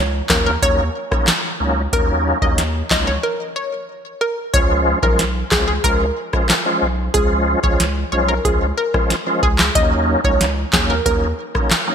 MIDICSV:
0, 0, Header, 1, 5, 480
1, 0, Start_track
1, 0, Key_signature, -6, "minor"
1, 0, Tempo, 652174
1, 1421, Time_signature, 4, 2, 24, 8
1, 8794, End_track
2, 0, Start_track
2, 0, Title_t, "Synth pluck"
2, 0, Program_c, 0, 84
2, 219, Note_on_c, 0, 70, 83
2, 318, Note_off_c, 0, 70, 0
2, 342, Note_on_c, 0, 70, 77
2, 440, Note_off_c, 0, 70, 0
2, 460, Note_on_c, 0, 73, 110
2, 799, Note_off_c, 0, 73, 0
2, 1422, Note_on_c, 0, 70, 101
2, 1520, Note_off_c, 0, 70, 0
2, 1782, Note_on_c, 0, 75, 74
2, 1880, Note_off_c, 0, 75, 0
2, 2142, Note_on_c, 0, 75, 89
2, 2240, Note_off_c, 0, 75, 0
2, 2261, Note_on_c, 0, 73, 78
2, 2360, Note_off_c, 0, 73, 0
2, 2380, Note_on_c, 0, 70, 84
2, 2479, Note_off_c, 0, 70, 0
2, 2620, Note_on_c, 0, 73, 76
2, 2719, Note_off_c, 0, 73, 0
2, 3099, Note_on_c, 0, 70, 85
2, 3199, Note_off_c, 0, 70, 0
2, 3338, Note_on_c, 0, 73, 107
2, 3438, Note_off_c, 0, 73, 0
2, 3702, Note_on_c, 0, 70, 78
2, 3800, Note_off_c, 0, 70, 0
2, 4059, Note_on_c, 0, 68, 83
2, 4158, Note_off_c, 0, 68, 0
2, 4178, Note_on_c, 0, 68, 81
2, 4278, Note_off_c, 0, 68, 0
2, 4298, Note_on_c, 0, 70, 114
2, 4638, Note_off_c, 0, 70, 0
2, 5255, Note_on_c, 0, 68, 109
2, 5356, Note_off_c, 0, 68, 0
2, 5620, Note_on_c, 0, 73, 77
2, 5719, Note_off_c, 0, 73, 0
2, 5977, Note_on_c, 0, 73, 75
2, 6077, Note_off_c, 0, 73, 0
2, 6098, Note_on_c, 0, 70, 76
2, 6198, Note_off_c, 0, 70, 0
2, 6219, Note_on_c, 0, 68, 84
2, 6318, Note_off_c, 0, 68, 0
2, 6459, Note_on_c, 0, 70, 83
2, 6558, Note_off_c, 0, 70, 0
2, 6940, Note_on_c, 0, 68, 88
2, 7039, Note_off_c, 0, 68, 0
2, 7178, Note_on_c, 0, 75, 100
2, 7278, Note_off_c, 0, 75, 0
2, 7541, Note_on_c, 0, 73, 82
2, 7640, Note_off_c, 0, 73, 0
2, 7899, Note_on_c, 0, 68, 79
2, 7999, Note_off_c, 0, 68, 0
2, 8021, Note_on_c, 0, 70, 77
2, 8120, Note_off_c, 0, 70, 0
2, 8139, Note_on_c, 0, 70, 113
2, 8478, Note_off_c, 0, 70, 0
2, 8794, End_track
3, 0, Start_track
3, 0, Title_t, "Tonewheel organ"
3, 0, Program_c, 1, 16
3, 218, Note_on_c, 1, 54, 81
3, 220, Note_on_c, 1, 58, 73
3, 222, Note_on_c, 1, 61, 75
3, 223, Note_on_c, 1, 63, 88
3, 378, Note_off_c, 1, 54, 0
3, 379, Note_off_c, 1, 58, 0
3, 379, Note_off_c, 1, 61, 0
3, 380, Note_off_c, 1, 63, 0
3, 457, Note_on_c, 1, 54, 90
3, 459, Note_on_c, 1, 58, 80
3, 461, Note_on_c, 1, 61, 86
3, 461, Note_on_c, 1, 63, 98
3, 617, Note_off_c, 1, 54, 0
3, 618, Note_off_c, 1, 58, 0
3, 619, Note_off_c, 1, 61, 0
3, 619, Note_off_c, 1, 63, 0
3, 818, Note_on_c, 1, 54, 77
3, 820, Note_on_c, 1, 58, 72
3, 822, Note_on_c, 1, 61, 69
3, 823, Note_on_c, 1, 63, 83
3, 978, Note_off_c, 1, 54, 0
3, 979, Note_off_c, 1, 58, 0
3, 979, Note_off_c, 1, 61, 0
3, 980, Note_off_c, 1, 63, 0
3, 1178, Note_on_c, 1, 54, 80
3, 1179, Note_on_c, 1, 58, 73
3, 1180, Note_on_c, 1, 61, 71
3, 1182, Note_on_c, 1, 63, 85
3, 1338, Note_off_c, 1, 54, 0
3, 1338, Note_off_c, 1, 58, 0
3, 1339, Note_off_c, 1, 61, 0
3, 1340, Note_off_c, 1, 63, 0
3, 1418, Note_on_c, 1, 54, 94
3, 1419, Note_on_c, 1, 58, 90
3, 1421, Note_on_c, 1, 61, 90
3, 1422, Note_on_c, 1, 63, 112
3, 1751, Note_off_c, 1, 54, 0
3, 1752, Note_off_c, 1, 58, 0
3, 1752, Note_off_c, 1, 61, 0
3, 1753, Note_off_c, 1, 63, 0
3, 1778, Note_on_c, 1, 54, 79
3, 1780, Note_on_c, 1, 58, 70
3, 1780, Note_on_c, 1, 61, 72
3, 1782, Note_on_c, 1, 63, 86
3, 1938, Note_off_c, 1, 54, 0
3, 1938, Note_off_c, 1, 58, 0
3, 1939, Note_off_c, 1, 61, 0
3, 1940, Note_off_c, 1, 63, 0
3, 2139, Note_on_c, 1, 54, 80
3, 2140, Note_on_c, 1, 58, 73
3, 2141, Note_on_c, 1, 61, 68
3, 2144, Note_on_c, 1, 63, 86
3, 2298, Note_off_c, 1, 54, 0
3, 2299, Note_off_c, 1, 58, 0
3, 2299, Note_off_c, 1, 61, 0
3, 2300, Note_off_c, 1, 63, 0
3, 3339, Note_on_c, 1, 53, 98
3, 3341, Note_on_c, 1, 56, 95
3, 3343, Note_on_c, 1, 61, 88
3, 3343, Note_on_c, 1, 65, 107
3, 3671, Note_off_c, 1, 53, 0
3, 3672, Note_off_c, 1, 56, 0
3, 3673, Note_off_c, 1, 61, 0
3, 3673, Note_off_c, 1, 65, 0
3, 3699, Note_on_c, 1, 53, 80
3, 3700, Note_on_c, 1, 56, 70
3, 3702, Note_on_c, 1, 61, 70
3, 3704, Note_on_c, 1, 65, 86
3, 3858, Note_off_c, 1, 53, 0
3, 3859, Note_off_c, 1, 56, 0
3, 3859, Note_off_c, 1, 61, 0
3, 3860, Note_off_c, 1, 65, 0
3, 4058, Note_on_c, 1, 53, 77
3, 4060, Note_on_c, 1, 56, 73
3, 4061, Note_on_c, 1, 61, 68
3, 4062, Note_on_c, 1, 65, 86
3, 4218, Note_off_c, 1, 53, 0
3, 4219, Note_off_c, 1, 56, 0
3, 4219, Note_off_c, 1, 61, 0
3, 4220, Note_off_c, 1, 65, 0
3, 4298, Note_on_c, 1, 53, 92
3, 4300, Note_on_c, 1, 56, 84
3, 4301, Note_on_c, 1, 61, 79
3, 4302, Note_on_c, 1, 65, 96
3, 4457, Note_off_c, 1, 53, 0
3, 4458, Note_off_c, 1, 56, 0
3, 4459, Note_off_c, 1, 61, 0
3, 4460, Note_off_c, 1, 65, 0
3, 4659, Note_on_c, 1, 53, 74
3, 4660, Note_on_c, 1, 56, 70
3, 4661, Note_on_c, 1, 61, 70
3, 4663, Note_on_c, 1, 65, 83
3, 4818, Note_off_c, 1, 53, 0
3, 4819, Note_off_c, 1, 56, 0
3, 4819, Note_off_c, 1, 61, 0
3, 4820, Note_off_c, 1, 65, 0
3, 4897, Note_on_c, 1, 53, 81
3, 4899, Note_on_c, 1, 56, 74
3, 4900, Note_on_c, 1, 61, 78
3, 4901, Note_on_c, 1, 65, 94
3, 5057, Note_off_c, 1, 53, 0
3, 5058, Note_off_c, 1, 56, 0
3, 5059, Note_off_c, 1, 61, 0
3, 5059, Note_off_c, 1, 65, 0
3, 5256, Note_on_c, 1, 53, 98
3, 5258, Note_on_c, 1, 56, 94
3, 5260, Note_on_c, 1, 61, 89
3, 5261, Note_on_c, 1, 65, 107
3, 5590, Note_off_c, 1, 53, 0
3, 5591, Note_off_c, 1, 56, 0
3, 5592, Note_off_c, 1, 61, 0
3, 5592, Note_off_c, 1, 65, 0
3, 5618, Note_on_c, 1, 53, 78
3, 5620, Note_on_c, 1, 56, 72
3, 5621, Note_on_c, 1, 61, 73
3, 5622, Note_on_c, 1, 65, 88
3, 5777, Note_off_c, 1, 53, 0
3, 5778, Note_off_c, 1, 56, 0
3, 5779, Note_off_c, 1, 61, 0
3, 5780, Note_off_c, 1, 65, 0
3, 5979, Note_on_c, 1, 53, 79
3, 5980, Note_on_c, 1, 56, 74
3, 5982, Note_on_c, 1, 61, 70
3, 5984, Note_on_c, 1, 65, 83
3, 6138, Note_off_c, 1, 53, 0
3, 6139, Note_off_c, 1, 56, 0
3, 6139, Note_off_c, 1, 61, 0
3, 6140, Note_off_c, 1, 65, 0
3, 6219, Note_on_c, 1, 53, 93
3, 6220, Note_on_c, 1, 56, 80
3, 6221, Note_on_c, 1, 61, 83
3, 6223, Note_on_c, 1, 65, 103
3, 6378, Note_off_c, 1, 53, 0
3, 6378, Note_off_c, 1, 56, 0
3, 6379, Note_off_c, 1, 61, 0
3, 6380, Note_off_c, 1, 65, 0
3, 6579, Note_on_c, 1, 53, 76
3, 6581, Note_on_c, 1, 56, 74
3, 6582, Note_on_c, 1, 61, 70
3, 6584, Note_on_c, 1, 65, 87
3, 6738, Note_off_c, 1, 53, 0
3, 6739, Note_off_c, 1, 56, 0
3, 6740, Note_off_c, 1, 61, 0
3, 6740, Note_off_c, 1, 65, 0
3, 6818, Note_on_c, 1, 53, 81
3, 6820, Note_on_c, 1, 56, 77
3, 6821, Note_on_c, 1, 61, 75
3, 6822, Note_on_c, 1, 65, 90
3, 6978, Note_off_c, 1, 53, 0
3, 6978, Note_off_c, 1, 56, 0
3, 6979, Note_off_c, 1, 61, 0
3, 6980, Note_off_c, 1, 65, 0
3, 7178, Note_on_c, 1, 54, 98
3, 7179, Note_on_c, 1, 58, 91
3, 7181, Note_on_c, 1, 61, 92
3, 7182, Note_on_c, 1, 63, 110
3, 7511, Note_off_c, 1, 54, 0
3, 7511, Note_off_c, 1, 58, 0
3, 7512, Note_off_c, 1, 61, 0
3, 7513, Note_off_c, 1, 63, 0
3, 7538, Note_on_c, 1, 54, 82
3, 7539, Note_on_c, 1, 58, 73
3, 7541, Note_on_c, 1, 61, 72
3, 7542, Note_on_c, 1, 63, 86
3, 7698, Note_off_c, 1, 54, 0
3, 7698, Note_off_c, 1, 58, 0
3, 7699, Note_off_c, 1, 61, 0
3, 7700, Note_off_c, 1, 63, 0
3, 7898, Note_on_c, 1, 54, 80
3, 7899, Note_on_c, 1, 58, 75
3, 7901, Note_on_c, 1, 61, 74
3, 7902, Note_on_c, 1, 63, 92
3, 8057, Note_off_c, 1, 54, 0
3, 8058, Note_off_c, 1, 58, 0
3, 8059, Note_off_c, 1, 61, 0
3, 8060, Note_off_c, 1, 63, 0
3, 8138, Note_on_c, 1, 54, 87
3, 8139, Note_on_c, 1, 58, 81
3, 8140, Note_on_c, 1, 61, 83
3, 8142, Note_on_c, 1, 63, 95
3, 8297, Note_off_c, 1, 54, 0
3, 8298, Note_off_c, 1, 58, 0
3, 8299, Note_off_c, 1, 61, 0
3, 8300, Note_off_c, 1, 63, 0
3, 8496, Note_on_c, 1, 54, 77
3, 8498, Note_on_c, 1, 58, 71
3, 8499, Note_on_c, 1, 61, 69
3, 8501, Note_on_c, 1, 63, 86
3, 8657, Note_off_c, 1, 54, 0
3, 8657, Note_off_c, 1, 58, 0
3, 8658, Note_off_c, 1, 61, 0
3, 8659, Note_off_c, 1, 63, 0
3, 8736, Note_on_c, 1, 54, 81
3, 8737, Note_on_c, 1, 58, 74
3, 8739, Note_on_c, 1, 61, 74
3, 8740, Note_on_c, 1, 63, 95
3, 8794, Note_off_c, 1, 54, 0
3, 8794, Note_off_c, 1, 58, 0
3, 8794, Note_off_c, 1, 61, 0
3, 8794, Note_off_c, 1, 63, 0
3, 8794, End_track
4, 0, Start_track
4, 0, Title_t, "Sub bass"
4, 0, Program_c, 2, 38
4, 0, Note_on_c, 2, 37, 86
4, 160, Note_off_c, 2, 37, 0
4, 221, Note_on_c, 2, 39, 95
4, 420, Note_off_c, 2, 39, 0
4, 460, Note_on_c, 2, 39, 115
4, 660, Note_off_c, 2, 39, 0
4, 1181, Note_on_c, 2, 37, 94
4, 1380, Note_off_c, 2, 37, 0
4, 1421, Note_on_c, 2, 39, 112
4, 1720, Note_off_c, 2, 39, 0
4, 1781, Note_on_c, 2, 39, 90
4, 2080, Note_off_c, 2, 39, 0
4, 2141, Note_on_c, 2, 37, 98
4, 2340, Note_off_c, 2, 37, 0
4, 3341, Note_on_c, 2, 37, 109
4, 3640, Note_off_c, 2, 37, 0
4, 3700, Note_on_c, 2, 35, 89
4, 4000, Note_off_c, 2, 35, 0
4, 4061, Note_on_c, 2, 37, 100
4, 4261, Note_off_c, 2, 37, 0
4, 4299, Note_on_c, 2, 37, 102
4, 4499, Note_off_c, 2, 37, 0
4, 5022, Note_on_c, 2, 35, 98
4, 5221, Note_off_c, 2, 35, 0
4, 5260, Note_on_c, 2, 37, 106
4, 5560, Note_off_c, 2, 37, 0
4, 5621, Note_on_c, 2, 37, 84
4, 5920, Note_off_c, 2, 37, 0
4, 5979, Note_on_c, 2, 35, 92
4, 6179, Note_off_c, 2, 35, 0
4, 6220, Note_on_c, 2, 37, 120
4, 6420, Note_off_c, 2, 37, 0
4, 6940, Note_on_c, 2, 37, 103
4, 7140, Note_off_c, 2, 37, 0
4, 7180, Note_on_c, 2, 39, 102
4, 7480, Note_off_c, 2, 39, 0
4, 7540, Note_on_c, 2, 37, 80
4, 7840, Note_off_c, 2, 37, 0
4, 7900, Note_on_c, 2, 39, 92
4, 8100, Note_off_c, 2, 39, 0
4, 8139, Note_on_c, 2, 39, 112
4, 8340, Note_off_c, 2, 39, 0
4, 8794, End_track
5, 0, Start_track
5, 0, Title_t, "Drums"
5, 218, Note_on_c, 9, 39, 96
5, 220, Note_on_c, 9, 36, 91
5, 221, Note_on_c, 9, 38, 118
5, 291, Note_off_c, 9, 39, 0
5, 294, Note_off_c, 9, 36, 0
5, 294, Note_off_c, 9, 38, 0
5, 460, Note_on_c, 9, 36, 95
5, 462, Note_on_c, 9, 42, 78
5, 534, Note_off_c, 9, 36, 0
5, 536, Note_off_c, 9, 42, 0
5, 823, Note_on_c, 9, 36, 92
5, 823, Note_on_c, 9, 37, 86
5, 896, Note_off_c, 9, 37, 0
5, 897, Note_off_c, 9, 36, 0
5, 937, Note_on_c, 9, 39, 101
5, 940, Note_on_c, 9, 38, 124
5, 942, Note_on_c, 9, 42, 67
5, 1011, Note_off_c, 9, 39, 0
5, 1014, Note_off_c, 9, 38, 0
5, 1016, Note_off_c, 9, 42, 0
5, 1420, Note_on_c, 9, 36, 127
5, 1420, Note_on_c, 9, 42, 76
5, 1494, Note_off_c, 9, 36, 0
5, 1494, Note_off_c, 9, 42, 0
5, 1781, Note_on_c, 9, 36, 97
5, 1854, Note_off_c, 9, 36, 0
5, 1899, Note_on_c, 9, 42, 81
5, 1900, Note_on_c, 9, 38, 71
5, 1973, Note_off_c, 9, 42, 0
5, 1974, Note_off_c, 9, 38, 0
5, 2140, Note_on_c, 9, 39, 97
5, 2141, Note_on_c, 9, 36, 88
5, 2143, Note_on_c, 9, 38, 118
5, 2213, Note_off_c, 9, 39, 0
5, 2215, Note_off_c, 9, 36, 0
5, 2217, Note_off_c, 9, 38, 0
5, 3341, Note_on_c, 9, 36, 127
5, 3341, Note_on_c, 9, 42, 77
5, 3414, Note_off_c, 9, 36, 0
5, 3414, Note_off_c, 9, 42, 0
5, 3701, Note_on_c, 9, 36, 94
5, 3775, Note_off_c, 9, 36, 0
5, 3821, Note_on_c, 9, 38, 69
5, 3821, Note_on_c, 9, 42, 79
5, 3894, Note_off_c, 9, 42, 0
5, 3895, Note_off_c, 9, 38, 0
5, 4061, Note_on_c, 9, 36, 91
5, 4061, Note_on_c, 9, 39, 99
5, 4064, Note_on_c, 9, 38, 125
5, 4134, Note_off_c, 9, 39, 0
5, 4135, Note_off_c, 9, 36, 0
5, 4137, Note_off_c, 9, 38, 0
5, 4300, Note_on_c, 9, 36, 94
5, 4302, Note_on_c, 9, 42, 74
5, 4373, Note_off_c, 9, 36, 0
5, 4376, Note_off_c, 9, 42, 0
5, 4661, Note_on_c, 9, 37, 85
5, 4663, Note_on_c, 9, 36, 91
5, 4735, Note_off_c, 9, 37, 0
5, 4736, Note_off_c, 9, 36, 0
5, 4779, Note_on_c, 9, 39, 98
5, 4782, Note_on_c, 9, 38, 120
5, 4784, Note_on_c, 9, 42, 65
5, 4852, Note_off_c, 9, 39, 0
5, 4855, Note_off_c, 9, 38, 0
5, 4857, Note_off_c, 9, 42, 0
5, 5260, Note_on_c, 9, 36, 127
5, 5261, Note_on_c, 9, 42, 78
5, 5334, Note_off_c, 9, 36, 0
5, 5334, Note_off_c, 9, 42, 0
5, 5621, Note_on_c, 9, 36, 96
5, 5694, Note_off_c, 9, 36, 0
5, 5740, Note_on_c, 9, 42, 82
5, 5741, Note_on_c, 9, 38, 69
5, 5814, Note_off_c, 9, 42, 0
5, 5815, Note_off_c, 9, 38, 0
5, 6219, Note_on_c, 9, 36, 97
5, 6222, Note_on_c, 9, 42, 80
5, 6293, Note_off_c, 9, 36, 0
5, 6296, Note_off_c, 9, 42, 0
5, 6582, Note_on_c, 9, 36, 94
5, 6582, Note_on_c, 9, 37, 84
5, 6656, Note_off_c, 9, 36, 0
5, 6656, Note_off_c, 9, 37, 0
5, 6700, Note_on_c, 9, 38, 72
5, 6702, Note_on_c, 9, 42, 64
5, 6773, Note_off_c, 9, 38, 0
5, 6775, Note_off_c, 9, 42, 0
5, 6940, Note_on_c, 9, 36, 101
5, 7014, Note_off_c, 9, 36, 0
5, 7056, Note_on_c, 9, 39, 91
5, 7059, Note_on_c, 9, 38, 117
5, 7129, Note_off_c, 9, 39, 0
5, 7132, Note_off_c, 9, 38, 0
5, 7179, Note_on_c, 9, 42, 78
5, 7180, Note_on_c, 9, 36, 124
5, 7253, Note_off_c, 9, 42, 0
5, 7254, Note_off_c, 9, 36, 0
5, 7540, Note_on_c, 9, 36, 95
5, 7614, Note_off_c, 9, 36, 0
5, 7660, Note_on_c, 9, 38, 69
5, 7660, Note_on_c, 9, 42, 77
5, 7733, Note_off_c, 9, 42, 0
5, 7734, Note_off_c, 9, 38, 0
5, 7899, Note_on_c, 9, 39, 98
5, 7900, Note_on_c, 9, 36, 92
5, 7902, Note_on_c, 9, 38, 119
5, 7972, Note_off_c, 9, 39, 0
5, 7974, Note_off_c, 9, 36, 0
5, 7975, Note_off_c, 9, 38, 0
5, 8140, Note_on_c, 9, 36, 96
5, 8141, Note_on_c, 9, 42, 77
5, 8213, Note_off_c, 9, 36, 0
5, 8215, Note_off_c, 9, 42, 0
5, 8501, Note_on_c, 9, 37, 85
5, 8503, Note_on_c, 9, 36, 94
5, 8574, Note_off_c, 9, 37, 0
5, 8576, Note_off_c, 9, 36, 0
5, 8618, Note_on_c, 9, 39, 104
5, 8621, Note_on_c, 9, 38, 127
5, 8623, Note_on_c, 9, 42, 68
5, 8691, Note_off_c, 9, 39, 0
5, 8695, Note_off_c, 9, 38, 0
5, 8696, Note_off_c, 9, 42, 0
5, 8794, End_track
0, 0, End_of_file